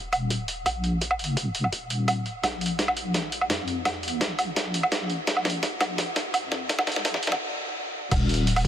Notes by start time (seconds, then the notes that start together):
Already playing: D#1
0.13 closed hi-hat, low woodblock
0.30 kick, closed hi-hat
0.48 closed hi-hat
0.66 A#1, kick, closed hi-hat, low woodblock
0.84 closed hi-hat
1.01 kick, closed hi-hat
1.11 low woodblock
1.19 closed hi-hat
1.24 closed hi-hat
1.37 D#1, kick, closed hi-hat
1.55 closed hi-hat
1.64 low woodblock
1.72 D#1, kick, closed hi-hat
1.90 closed hi-hat
2.08 kick, closed hi-hat, low woodblock
2.26 closed hi-hat
2.43 A#1, kick, snare, closed hi-hat, low woodblock
2.61 closed hi-hat
2.66 closed hi-hat
2.79 kick, snare, closed hi-hat
2.88 low woodblock
2.97 closed hi-hat
3.14 kick, snare, closed hi-hat
3.32 closed hi-hat
3.41 low woodblock
3.50 F2, kick, snare, closed hi-hat
3.68 closed hi-hat
3.85 kick, snare, closed hi-hat, low woodblock
3.99 E2
4.03 closed hi-hat
4.08 closed hi-hat
4.21 A#1, kick, snare, closed hi-hat
4.39 closed hi-hat, low woodblock
4.56 A#1, kick, snare, closed hi-hat
4.74 closed hi-hat
4.83 low woodblock
4.92 kick, snare, closed hi-hat
5.10 closed hi-hat
5.27 A#1, kick, snare, closed hi-hat
5.37 low woodblock
5.45 snare, closed hi-hat
5.50 closed hi-hat
5.63 kick, snare, closed hi-hat
5.81 snare, closed hi-hat, low woodblock
5.98 kick, snare, closed hi-hat
6.16 snare, closed hi-hat
6.34 F2, kick, closed hi-hat, low woodblock
6.52 snare, closed hi-hat
6.69 kick, snare, closed hi-hat
6.79 snare, low woodblock
6.87 snare, closed hi-hat
6.92 closed hi-hat
6.96 snare
7.05 A#1, kick, snare, closed hi-hat
7.14 snare
7.23 closed hi-hat
7.27 snare
7.32 snare, low woodblock
8.11 D#1, kick, closed hi-hat, crash, low woodblock
8.29 open hi-hat
8.34 closed hi-hat
8.47 closed hi-hat
8.56 open hi-hat, low woodblock